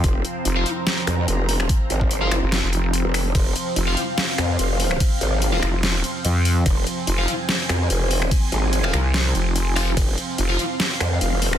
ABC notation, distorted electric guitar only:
X:1
M:4/4
L:1/16
Q:"Swing 16ths" 1/4=145
K:Fm
V:1 name="Distorted electric guitar"
z4 z [Fcf] z8 z2 | z4 z [Fcf] z8 z2 | z4 z [Fcf] z8 z2 | z4 z [Fcf] z8 z2 |
z4 z [Fcf] z8 z2 | z4 z [Fcf] z8 [Fcf] z | z4 z [Fcf] z8 z2 |]